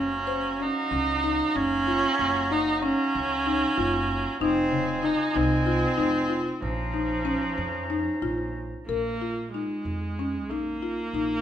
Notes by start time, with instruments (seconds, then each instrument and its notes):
Already playing: upright bass F#1, woodwind section F#3 F5 A#5, marimba C#4, viola C#4
0.27 marimba C5
0.60 marimba C#4, viola D#4
0.91 upright bass C#2, marimba C#4
1.24 marimba D#4
1.55 upright bass F#1, marimba C#4, viola C#4
1.87 marimba F4
2.19 upright bass F#1
2.51 marimba D#4, viola D#4
2.82 viola C#4, marimba C#4
3.15 upright bass C#2
3.46 marimba D#4
3.77 upright bass F#1, marimba F4
4.41 upright bass F1, viola C4, marimba D#4, woodwind section F4 D#5 G#5
4.72 marimba C#3
5.03 marimba D#4, viola D#4
5.34 upright bass C2, viola C4, marimba D#4
5.66 marimba F4
5.98 upright bass F1, marimba D#4
6.29 marimba F4
6.60 upright bass A#1, viola F3, woodwind section C#4 C5 A#5
6.94 marimba D#4
7.25 marimba C#4
7.58 upright bass F2
7.90 marimba D#4
8.22 upright bass A#1, marimba F4
8.87 upright bass A#1, viola A#3, marimba A#4
9.22 marimba F4
9.52 viola G#3, marimba D#4
9.85 upright bass F2
10.19 marimba C#4
10.49 upright bass A#1, viola A#3, marimba D#4
10.83 marimba F4
11.13 upright bass A#1, marimba D#4